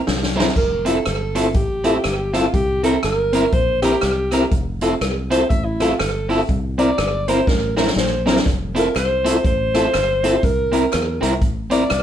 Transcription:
0.07 fingered electric bass C2, snare
0.23 snare
0.36 clean electric guitar C4 E4 A#4, tonewheel organ C4 E4 A#4
0.40 snare
0.56 fingered electric bass F1, alto saxophone A#4, kick, splash
0.85 clean electric guitar C4 E4 A4, tonewheel organ E4 F4 A4, alto saxophone A4, closed hi-hat
1.06 fingered electric bass G1, cross-stick, closed hi-hat
1.35 clean electric guitar C4 E4 A4, tonewheel organ E4 F4 A4, closed hi-hat
1.54 fingered electric bass A1, alto saxophone G4, kick, closed hi-hat
1.84 clean electric guitar C4 E4 A4, tonewheel organ E4 F4 A4, closed hi-hat
2.04 fingered electric bass G1, cross-stick, closed hi-hat
2.33 clean electric guitar C4 E4 A4, tonewheel organ E4 F4 A4, alto saxophone F4, cross-stick, closed hi-hat
2.54 fingered electric bass C2, alto saxophone G4, kick, closed hi-hat
2.83 tonewheel organ C4 E4 A#4, clean electric guitar C4 E4 A#4, alto saxophone A4, closed hi-hat
3.03 fingered electric bass G1, alto saxophone A#4, cross-stick, closed hi-hat
3.32 tonewheel organ C4 E4 A#4, clean electric guitar C4 E4 A#4, closed hi-hat
3.52 fingered electric bass A#1, alto saxophone C5, kick, closed hi-hat
3.82 tonewheel organ C4 E4 A#4, clean electric guitar C4 E4 A#4, alto saxophone G4, cross-stick, closed hi-hat
4.01 fingered electric bass C2, cross-stick, closed hi-hat
4.31 clean electric guitar C4 E4 A#4, tonewheel organ C4 E4 A#4, cross-stick, closed hi-hat
4.51 fingered electric bass F1, kick, closed hi-hat
4.81 clean electric guitar C4 E4 A4, tonewheel organ E4 F4 A4, closed hi-hat
5.01 fingered electric bass C2, cross-stick, closed hi-hat
5.30 clean electric guitar C4 E4 A4, tonewheel organ E4 F4 A4, alto saxophone C5, closed hi-hat
5.49 fingered electric bass A1, alto saxophone E5, kick, closed hi-hat
5.65 alto saxophone E4
5.80 clean electric guitar C4 E4 A4, tonewheel organ E4 F4 A4, alto saxophone F4, cross-stick, closed hi-hat
5.99 fingered electric bass G1, alto saxophone A4, cross-stick, closed hi-hat
6.29 clean electric guitar C4 E4 A4, tonewheel organ E4 F4 A4, open hi-hat
6.49 fingered electric bass C2, kick, closed hi-hat
6.78 tonewheel organ C4 E4 A#4, clean electric guitar C4 E4 A#4, alto saxophone D5, closed hi-hat
6.98 fingered electric bass G1, cross-stick, closed hi-hat
7.28 tonewheel organ C4 E4 A#4, clean electric guitar C4 E4 A#4, alto saxophone C5, closed hi-hat
7.47 fingered electric bass A1, alto saxophone A#4, kick, snare
7.77 clean electric guitar C4 E4 A#4, tonewheel organ C4 E4 A#4, alto saxophone A#4, snare
7.87 snare
7.96 fingered electric bass A#1, alto saxophone C5, snare
8.26 clean electric guitar C4 E4 A#4, tonewheel organ C4 E4 A#4, snare
8.36 snare
8.46 fingered electric bass F1, kick, closed hi-hat
8.75 clean electric guitar C4 E4 A4, tonewheel organ E4 F4 A4, alto saxophone A#4, closed hi-hat
8.96 fingered electric bass C2, alto saxophone C5, cross-stick, clap, closed hi-hat
9.24 clean electric guitar C4 E4 A4, tonewheel organ E4 F4 A4, closed hi-hat
9.45 fingered electric bass A1, alto saxophone C5, kick, closed hi-hat
9.74 clean electric guitar C4 E4 A4, tonewheel organ E4 F4 A4, cross-stick, closed hi-hat
9.94 fingered electric bass G1, cross-stick, clap, closed hi-hat
10.23 clean electric guitar C4 E4 A4, tonewheel organ E4 F4 A4, closed hi-hat
10.43 fingered electric bass C2, alto saxophone A#4, kick, closed hi-hat
10.72 clean electric guitar C4 E4 A#4, tonewheel organ C4 E4 A#4, closed hi-hat
10.93 fingered electric bass E2, cross-stick, clap, closed hi-hat
11.21 fingered electric bass C2, clean electric guitar C4 E4 A#4, tonewheel organ C4 E4 A#4, closed hi-hat
11.42 fingered electric bass A1, kick, closed hi-hat
11.70 clean electric guitar C4 E4 A#4, tonewheel organ C4 E4 A#4, alto saxophone D5, closed hi-hat
11.90 fingered electric bass C2, cross-stick, clap, closed hi-hat

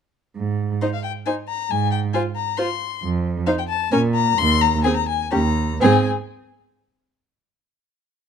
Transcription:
0.36 cello G#2
0.82 viola D#4, violin C5 D#5
0.94 violin F5
1.04 violin G5
1.26 viola D#4, violin C5 G#5
1.49 violin A#5
1.70 cello G#2, violin G#5
1.91 violin G5
2.13 viola F4, violin C5 G#5
2.36 violin A#5
2.57 viola F4, violin C5 C6
3.03 cello F2
3.47 viola D#4, violin C5 F5
3.59 violin G5
3.69 violin A5
3.92 cello A#2, viola C#4, violin A#4 G#5
4.15 violin A#5
4.38 cello D#2, violin C6
4.61 violin A#5
4.84 viola C4, violin G#4 G#5
4.96 violin A#5
5.09 violin G#5
5.31 cello D#2, viola C#4, violin G4 A#5
5.80 cello G#2, viola C4, violin G#4 G#5

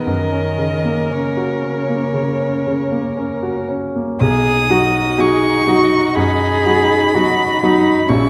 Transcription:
Already playing: grand piano D#4
0.06 grand piano F#2, cello D#3, viola A#4, violin D#5
0.32 grand piano C#4
0.58 grand piano C#3
0.85 grand piano A#3
1.11 cello C#3, grand piano C#4, violin C#5
1.37 grand piano F#4
1.63 grand piano C#4
1.89 grand piano A#3
2.14 grand piano C#3
2.40 grand piano C#4
2.67 grand piano C#3
2.91 grand piano A#3
3.17 grand piano C#4
3.43 grand piano F#4
3.69 grand piano C#4
3.96 grand piano A#3
4.21 grand piano B1, viola D#4, cello G#4, violin D#6
4.70 grand piano F#3 D#4 F#4, cello F#4
5.18 grand piano F#3 D#4 F#4, cello G#4, violin C#6
5.67 grand piano F#3 D#4 F#4, cello F#4
6.16 grand piano F#2, cello G#4, violin B5
6.66 grand piano F#3 D#4 F#4
7.15 grand piano F#3 D#4 F#4, cello F#4
7.63 grand piano F#3 D#4 F#4, cello D#4
8.08 grand piano A#1, cello C#4, viola E4, violin C#6

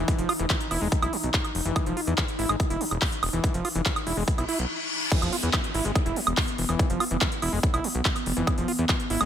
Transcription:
Already playing: synth texture E3 D#4
0.08 acid bass E3, kick, closed hi-hat
0.18 analog synth bass F1, acid bass F3, closed hi-hat
0.29 acid bass F4, open hi-hat, high woodblock
0.39 analog synth bass F1, acid bass E3, closed hi-hat
0.50 acid bass E3, kick, clap, closed hi-hat
0.60 closed hi-hat
0.71 analog synth bass E1, acid bass E4, open hi-hat, high woodblock
0.81 analog synth bass E1, acid bass G#3, open hi-hat
0.92 kick, closed hi-hat
1.02 analog synth bass B1, acid bass E4, closed hi-hat, high woodblock
1.13 acid bass E3, open hi-hat
1.23 analog synth bass B1, closed hi-hat
1.34 kick, clap, closed hi-hat
1.44 closed hi-hat, high woodblock
1.55 analog synth bass F1, open hi-hat
1.65 analog synth bass F1, acid bass E3, closed hi-hat
1.76 kick, closed hi-hat, high woodblock
1.86 analog synth bass E1, acid bass F3, closed hi-hat
1.97 acid bass F4, open hi-hat
2.07 analog synth bass E2, acid bass E3, closed hi-hat
2.18 acid bass E3, kick, clap, closed hi-hat, high woodblock
2.28 closed hi-hat
2.39 analog synth bass G#1, acid bass E4, open hi-hat
2.49 analog synth bass G#1, acid bass G#3, closed hi-hat, high woodblock
2.60 kick, closed hi-hat
2.70 analog synth bass E1, acid bass E4, closed hi-hat
2.81 acid bass E3, open hi-hat
2.91 analog synth bass E1, closed hi-hat, high woodblock
3.02 kick, clap, open hi-hat
3.12 closed hi-hat
3.23 analog synth bass E1, open hi-hat, high woodblock
3.33 analog synth bass E1, acid bass E3, closed hi-hat
3.44 acid bass E3, kick, closed hi-hat
3.54 analog synth bass F1, acid bass F3, closed hi-hat
3.65 acid bass F4, open hi-hat, high woodblock
3.75 analog synth bass F1, acid bass E3, closed hi-hat
3.86 acid bass E3, kick, clap, closed hi-hat
3.96 closed hi-hat, high woodblock
4.07 analog synth bass E1, acid bass E4, open hi-hat
4.17 analog synth bass E1, acid bass G#3, open hi-hat
4.28 kick, closed hi-hat, reverse cymbal
4.38 analog synth bass B1, acid bass E4, closed hi-hat, high woodblock
4.49 acid bass E4, open hi-hat
4.59 analog synth bass B1, closed hi-hat
5.12 synth texture E3 B3, acid bass E3, kick, closed hi-hat, crash, downlifter
5.22 analog synth bass E1, acid bass F3, closed hi-hat, high woodblock
5.33 acid bass F4, open hi-hat
5.43 analog synth bass E2, acid bass E3, closed hi-hat
5.53 acid bass E3, kick, clap, closed hi-hat, high woodblock
5.64 closed hi-hat
5.74 analog synth bass G#1, acid bass E4, open hi-hat
5.85 analog synth bass G#1, acid bass G#3, closed hi-hat
5.95 kick, closed hi-hat, high woodblock
6.06 analog synth bass E1, acid bass E4, closed hi-hat
6.16 acid bass E3, open hi-hat
6.27 analog synth bass E1, closed hi-hat, high woodblock
6.37 kick, clap, open hi-hat
6.48 closed hi-hat
6.58 analog synth bass E1, open hi-hat
6.69 analog synth bass E1, acid bass E3, closed hi-hat, high woodblock
6.79 acid bass E3, kick, closed hi-hat
6.90 analog synth bass F1, acid bass F3, closed hi-hat
7.00 acid bass F4, open hi-hat, high woodblock
7.11 analog synth bass F1, acid bass E3, closed hi-hat
7.21 acid bass E3, kick, clap, closed hi-hat
7.32 closed hi-hat
7.42 analog synth bass E1, acid bass E4, open hi-hat, high woodblock
7.53 analog synth bass E1, acid bass G#3, open hi-hat
7.63 kick, closed hi-hat
7.74 analog synth bass B1, acid bass E4, closed hi-hat, high woodblock
7.84 acid bass E3, open hi-hat
7.95 analog synth bass B1, closed hi-hat
8.05 kick, clap, closed hi-hat
8.16 closed hi-hat, high woodblock
8.26 analog synth bass F1, open hi-hat
8.37 analog synth bass F1, acid bass E3, closed hi-hat
8.47 kick, closed hi-hat, high woodblock
8.58 analog synth bass E1, acid bass F3, closed hi-hat
8.68 acid bass F4, open hi-hat
8.79 analog synth bass E2, acid bass E3, closed hi-hat
8.89 acid bass E3, kick, clap, closed hi-hat, high woodblock
9.00 closed hi-hat
9.10 analog synth bass G#1, acid bass E4, open hi-hat
9.21 analog synth bass G#1, acid bass G#3, closed hi-hat, high woodblock

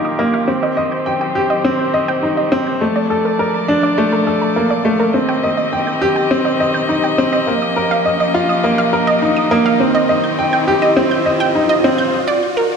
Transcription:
Already playing: string quartet D#3 A#3 F4 G4, upright piano A#3 D#4 F4 A#4 D#5, riser
0.05 synth arpeggio sound D#6
0.19 upright piano A#3
0.34 synth arpeggio sound F5
0.48 upright piano C4, string quartet C4 C5
0.63 synth arpeggio sound D#5
0.77 upright piano D#5
0.92 synth arpeggio sound G6
1.06 upright piano G5
1.21 synth arpeggio sound G5
1.35 upright piano G4
1.50 synth arpeggio sound D#5
1.64 upright piano C4
1.79 synth arpeggio sound G6
1.94 upright piano D#5
2.08 synth arpeggio sound G5
2.23 upright piano D#4
2.37 synth arpeggio sound D#5
2.52 upright piano C4
2.67 synth arpeggio sound G6
2.81 string quartet F3 D5 A5, upright piano A3
2.96 synth arpeggio sound D5
3.10 upright piano A4
3.25 synth arpeggio sound A#4
3.39 upright piano A#4
3.54 synth arpeggio sound A#5
3.68 upright piano D4
3.83 synth arpeggio sound D5
3.98 upright piano A3
4.13 synth arpeggio sound A#4
4.27 upright piano A4
4.42 synth arpeggio sound A#5
4.56 upright piano A#3
4.70 synth arpeggio sound D5
4.85 upright piano A3
5.00 synth arpeggio sound A#4
5.14 string quartet D#3 C4 G4 D#5, upright piano C4
5.29 synth arpeggio sound G5
5.44 upright piano D#5
5.57 synth arpeggio sound D#5
5.73 upright piano G5
5.87 synth arpeggio sound G6
6.02 upright piano G4
6.16 synth arpeggio sound G5
6.31 upright piano C4
6.45 synth arpeggio sound D#5
6.60 upright piano D#5
6.74 synth arpeggio sound G6
6.89 upright piano D#4
7.04 synth arpeggio sound G5
7.18 upright piano C4
7.33 synth arpeggio sound D#5
7.47 string quartet F3 A#3, upright piano A#3
7.62 synth arpeggio sound D#6
7.76 upright piano A#4
7.91 synth arpeggio sound F5
8.05 upright piano D#5
8.20 synth arpeggio sound D#5
8.34 upright piano F4
8.49 synth arpeggio sound D#6
8.64 upright piano A#3
8.78 synth arpeggio sound F5
8.93 upright piano A#4
9.07 synth arpeggio sound D#5
9.22 upright piano D#4
9.37 synth arpeggio sound D#6
9.51 upright piano A#3
9.66 synth arpeggio sound F5
9.80 string quartet D#3 C4, upright piano C4
9.95 synth arpeggio sound D#5
10.09 upright piano D#5
10.24 synth arpeggio sound G6
10.39 upright piano G5
10.53 synth arpeggio sound G5
10.68 upright piano G4
10.82 synth arpeggio sound D#5
10.97 upright piano C4
11.11 synth arpeggio sound G6
11.26 upright piano D#5
11.40 synth arpeggio sound G5
11.55 upright piano D#4
11.69 synth arpeggio sound D#5
11.84 upright piano C4
11.98 synth arpeggio sound G6
12.27 synth arpeggio sound D5
12.57 synth arpeggio sound A#4

